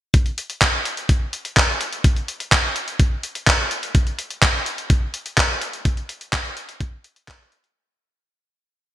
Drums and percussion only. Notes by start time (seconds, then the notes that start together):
0.14 kick, closed hi-hat
0.26 closed hi-hat
0.38 closed hi-hat
0.50 closed hi-hat
0.61 kick, clap, closed hi-hat
0.85 closed hi-hat
0.97 closed hi-hat
1.09 kick, closed hi-hat
1.33 closed hi-hat
1.45 closed hi-hat
1.57 kick, clap, closed hi-hat
1.81 closed hi-hat
1.93 closed hi-hat
2.04 kick, closed hi-hat
2.16 closed hi-hat
2.28 closed hi-hat
2.40 closed hi-hat
2.52 kick, clap, closed hi-hat
2.76 closed hi-hat
2.88 closed hi-hat
3.00 kick, closed hi-hat
3.23 closed hi-hat
3.35 closed hi-hat
3.47 kick, clap, closed hi-hat
3.71 closed hi-hat
3.83 closed hi-hat
3.95 kick, closed hi-hat
4.07 closed hi-hat
4.19 closed hi-hat
4.30 closed hi-hat
4.42 kick, clap, closed hi-hat
4.66 closed hi-hat
4.78 closed hi-hat
4.90 kick, closed hi-hat
5.14 closed hi-hat
5.26 closed hi-hat
5.38 kick, clap, closed hi-hat
5.61 closed hi-hat
5.73 closed hi-hat
5.85 kick, closed hi-hat
5.97 closed hi-hat
6.09 closed hi-hat
6.21 closed hi-hat
6.33 kick, clap, closed hi-hat
6.45 closed hi-hat
6.57 closed hi-hat
6.69 closed hi-hat
6.80 kick, closed hi-hat
7.04 closed hi-hat
7.16 closed hi-hat
7.28 kick, clap, closed hi-hat
7.52 closed hi-hat
7.64 closed hi-hat